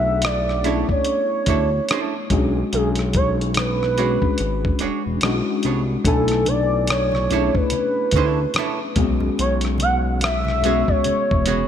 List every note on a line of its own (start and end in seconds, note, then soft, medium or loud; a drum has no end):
0.00 0.85 B1 loud
0.00 0.58 A3 medium
0.00 0.59 B3 medium
0.00 0.59 D4 medium
0.00 0.59 E4 medium
0.00 0.63 G#4 medium
0.00 0.26 E5 medium
0.22 0.89 D5 medium
0.22 muted hollow-body jazz guitar stroke soft
0.22 cross-stick medium
0.22 closed hi-hat medium
0.49 cross-stick soft
0.64 2.23 A3 medium
0.64 2.23 C#4 medium
0.64 2.23 D4 medium
0.64 0.85 D4 medium
0.64 0.85 E4 medium
0.64 2.24 E4 medium
0.64 2.24 G#4 medium
0.64 0.86 A4 medium
0.64 0.86 C#5 medium
0.64 closed hi-hat medium
0.89 2.27 C#5 medium
0.89 kick medium
1.05 muted hollow-body jazz guitar stroke soft
1.05 closed hi-hat medium
1.46 1.80 D2 medium
1.46 1.69 D4 medium
1.46 1.69 E4 medium
1.46 1.69 A4 medium
1.46 1.69 C#5 medium
1.46 kick medium
1.46 closed hi-hat medium
1.89 2.13 D4 medium
1.89 2.13 E4 medium
1.89 2.14 A4 medium
1.89 2.14 C#5 medium
1.89 cross-stick medium
1.89 closed hi-hat medium
2.30 2.64 B1 medium
2.30 3.90 G#3 medium
2.30 3.90 C#4 medium
2.30 3.90 D4 medium
2.30 3.90 F#4 medium
2.30 3.91 G#4 medium
2.30 kick medium
2.30 closed hi-hat medium
2.73 4.18 B1 medium
2.73 2.88 G#4 medium
2.73 closed hi-hat medium
2.95 cross-stick soft
2.95 closed hi-hat soft
3.13 3.29 C#5 medium
3.13 kick medium
3.13 closed hi-hat medium
3.41 closed hi-hat soft
3.54 5.19 B4 medium
3.54 muted hollow-body jazz guitar stroke soft
3.54 cross-stick medium
3.54 closed hi-hat medium
3.83 cross-stick soft
3.98 5.22 G#3 medium
3.98 5.22 C#4 medium
3.98 4.18 D4 medium
3.98 5.23 D4 medium
3.98 4.18 F#4 medium
3.98 5.23 F#4 medium
3.98 4.19 G#4 medium
3.98 5.23 G#4 medium
3.98 4.19 C#5 medium
3.98 closed hi-hat medium
4.22 kick medium
4.38 4.72 G#1 medium
4.38 muted hollow-body jazz guitar stroke soft
4.38 closed hi-hat medium
4.65 kick medium
4.79 4.91 E1 soft
4.79 5.01 D4 medium
4.79 5.02 F#4 medium
4.79 5.02 G#4 medium
4.79 5.02 C#5 medium
4.79 closed hi-hat medium
5.06 5.19 E1 medium
5.21 5.42 B1 loud
5.21 6.02 G#3 medium
5.21 6.02 C#4 medium
5.21 6.03 D4 medium
5.21 6.03 E4 medium
5.21 cross-stick medium
5.21 closed hi-hat medium
5.25 6.03 F#4 medium
5.63 5.97 C2 medium
5.63 5.81 B3 medium
5.63 5.81 D4 medium
5.63 5.81 G#4 medium
5.63 5.81 C#5 medium
5.63 closed hi-hat medium
6.05 7.51 B1 loud
6.05 7.25 A3 medium
6.05 7.25 B3 medium
6.05 7.25 D4 medium
6.05 7.26 E4 medium
6.05 6.49 A4 medium
6.05 7.26 G#5 medium
6.05 kick loud
6.05 closed hi-hat medium
6.05 muted conga soft
6.28 cross-stick soft
6.28 closed hi-hat medium
6.46 6.89 D5 loud
6.46 closed hi-hat medium
6.46 muted conga soft
6.46 high conga medium
6.87 7.48 C#5 medium
6.87 muted hollow-body jazz guitar stroke soft
6.87 cross-stick medium
6.87 closed hi-hat medium
6.87 muted conga soft
7.12 cross-stick soft
7.12 high conga medium
7.30 8.90 A3 medium
7.30 8.90 C#4 medium
7.30 8.90 D4 medium
7.30 7.52 D4 medium
7.30 8.91 E4 medium
7.30 7.52 E4 medium
7.30 8.91 G#4 medium
7.30 7.53 A4 medium
7.30 7.53 C#5 medium
7.30 closed hi-hat medium
7.30 muted conga soft
7.30 low conga medium
7.48 7.57 C#5 medium
7.55 8.97 B4 loud
7.55 kick medium
7.70 muted hollow-body jazz guitar stroke soft
7.70 closed hi-hat medium
7.70 muted conga soft
7.70 high conga medium
8.11 8.47 D2 medium
8.11 kick medium
8.11 closed hi-hat medium
8.11 muted conga soft
8.11 high conga soft
8.16 8.38 D4 medium
8.16 8.39 E4 medium
8.16 8.39 A4 medium
8.16 8.39 C#5 medium
8.54 cross-stick loud
8.54 closed hi-hat medium
8.54 muted conga soft
8.54 high conga medium
8.58 8.78 D4 medium
8.58 8.78 E4 medium
8.58 8.78 A4 medium
8.58 8.78 C#5 medium
8.96 9.30 B1 medium
8.96 10.56 G#3 medium
8.96 10.56 B3 medium
8.96 9.05 C4 medium
8.96 10.57 F#4 medium
8.96 10.57 G#4 medium
8.96 kick loud
8.96 closed hi-hat medium
8.96 muted conga soft
8.96 high conga soft
8.96 low conga soft
9.04 10.60 C#4 medium
9.20 low conga medium
9.38 10.84 B1 medium
9.38 9.54 C#5 medium
9.38 closed hi-hat medium
9.38 muted conga soft
9.61 cross-stick soft
9.61 closed hi-hat medium
9.78 9.96 F#5 loud
9.78 closed hi-hat medium
9.78 muted conga soft
9.78 high conga medium
10.19 10.90 E5 loud
10.19 closed hi-hat medium
10.19 muted conga soft
10.24 muted hollow-body jazz guitar stroke soft
10.24 cross-stick loud
10.45 cross-stick soft
10.45 high conga medium
10.62 11.68 G#3 medium
10.62 11.68 B3 medium
10.62 10.85 B3 medium
10.62 11.68 C#4 medium
10.62 11.68 F#4 medium
10.62 10.85 F#4 medium
10.62 11.68 G#4 medium
10.62 10.86 G#4 medium
10.62 closed hi-hat medium
10.62 low conga medium
10.66 10.86 C#5 medium
10.88 11.68 C#5 medium
10.88 kick medium
11.04 11.16 E1 soft
11.04 muted hollow-body jazz guitar stroke soft
11.04 closed hi-hat medium
11.04 muted conga soft
11.04 high conga medium
11.31 11.64 E1 medium
11.31 kick medium
11.46 11.68 B3 medium
11.46 11.68 F#4 medium
11.46 11.68 G#4 medium
11.46 11.68 C#5 medium
11.46 closed hi-hat medium
11.46 muted conga soft
11.46 high conga soft